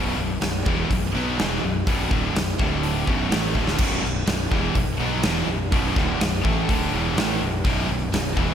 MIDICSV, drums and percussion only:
0, 0, Header, 1, 2, 480
1, 0, Start_track
1, 0, Key_signature, 2, "minor"
1, 0, Tempo, 481541
1, 1864, Time_signature, 4, 2, 24, 8
1, 8513, End_track
2, 0, Start_track
2, 0, Title_t, "Drums"
2, 413, Note_on_c, 9, 46, 61
2, 419, Note_on_c, 9, 38, 104
2, 513, Note_off_c, 9, 46, 0
2, 519, Note_off_c, 9, 38, 0
2, 660, Note_on_c, 9, 36, 114
2, 760, Note_off_c, 9, 36, 0
2, 903, Note_on_c, 9, 36, 93
2, 905, Note_on_c, 9, 46, 59
2, 1003, Note_off_c, 9, 36, 0
2, 1005, Note_off_c, 9, 46, 0
2, 1387, Note_on_c, 9, 46, 55
2, 1393, Note_on_c, 9, 38, 116
2, 1487, Note_off_c, 9, 46, 0
2, 1493, Note_off_c, 9, 38, 0
2, 1864, Note_on_c, 9, 36, 118
2, 1864, Note_on_c, 9, 46, 67
2, 1964, Note_off_c, 9, 36, 0
2, 1964, Note_off_c, 9, 46, 0
2, 2104, Note_on_c, 9, 36, 110
2, 2204, Note_off_c, 9, 36, 0
2, 2352, Note_on_c, 9, 46, 63
2, 2358, Note_on_c, 9, 38, 112
2, 2451, Note_off_c, 9, 46, 0
2, 2457, Note_off_c, 9, 38, 0
2, 2586, Note_on_c, 9, 36, 108
2, 2686, Note_off_c, 9, 36, 0
2, 2822, Note_on_c, 9, 46, 56
2, 2922, Note_off_c, 9, 46, 0
2, 3064, Note_on_c, 9, 36, 93
2, 3164, Note_off_c, 9, 36, 0
2, 3306, Note_on_c, 9, 46, 67
2, 3312, Note_on_c, 9, 38, 116
2, 3405, Note_off_c, 9, 46, 0
2, 3411, Note_off_c, 9, 38, 0
2, 3541, Note_on_c, 9, 36, 66
2, 3640, Note_off_c, 9, 36, 0
2, 3662, Note_on_c, 9, 38, 83
2, 3762, Note_off_c, 9, 38, 0
2, 3772, Note_on_c, 9, 49, 116
2, 3779, Note_on_c, 9, 36, 117
2, 3872, Note_off_c, 9, 49, 0
2, 3879, Note_off_c, 9, 36, 0
2, 4031, Note_on_c, 9, 38, 37
2, 4130, Note_off_c, 9, 38, 0
2, 4256, Note_on_c, 9, 46, 63
2, 4262, Note_on_c, 9, 38, 110
2, 4356, Note_off_c, 9, 46, 0
2, 4362, Note_off_c, 9, 38, 0
2, 4501, Note_on_c, 9, 36, 114
2, 4601, Note_off_c, 9, 36, 0
2, 4734, Note_on_c, 9, 46, 58
2, 4739, Note_on_c, 9, 36, 89
2, 4834, Note_off_c, 9, 46, 0
2, 4839, Note_off_c, 9, 36, 0
2, 5213, Note_on_c, 9, 46, 63
2, 5219, Note_on_c, 9, 38, 124
2, 5313, Note_off_c, 9, 46, 0
2, 5319, Note_off_c, 9, 38, 0
2, 5701, Note_on_c, 9, 46, 59
2, 5704, Note_on_c, 9, 36, 119
2, 5801, Note_off_c, 9, 46, 0
2, 5804, Note_off_c, 9, 36, 0
2, 5945, Note_on_c, 9, 36, 105
2, 5957, Note_on_c, 9, 38, 35
2, 6044, Note_off_c, 9, 36, 0
2, 6056, Note_off_c, 9, 38, 0
2, 6188, Note_on_c, 9, 46, 61
2, 6194, Note_on_c, 9, 38, 121
2, 6288, Note_off_c, 9, 46, 0
2, 6293, Note_off_c, 9, 38, 0
2, 6427, Note_on_c, 9, 36, 113
2, 6527, Note_off_c, 9, 36, 0
2, 6669, Note_on_c, 9, 36, 101
2, 6678, Note_on_c, 9, 46, 67
2, 6769, Note_off_c, 9, 36, 0
2, 6778, Note_off_c, 9, 46, 0
2, 7152, Note_on_c, 9, 46, 64
2, 7158, Note_on_c, 9, 38, 123
2, 7251, Note_off_c, 9, 46, 0
2, 7257, Note_off_c, 9, 38, 0
2, 7624, Note_on_c, 9, 36, 113
2, 7627, Note_on_c, 9, 46, 70
2, 7723, Note_off_c, 9, 36, 0
2, 7727, Note_off_c, 9, 46, 0
2, 8107, Note_on_c, 9, 46, 65
2, 8113, Note_on_c, 9, 38, 109
2, 8207, Note_off_c, 9, 46, 0
2, 8213, Note_off_c, 9, 38, 0
2, 8343, Note_on_c, 9, 36, 103
2, 8443, Note_off_c, 9, 36, 0
2, 8513, End_track
0, 0, End_of_file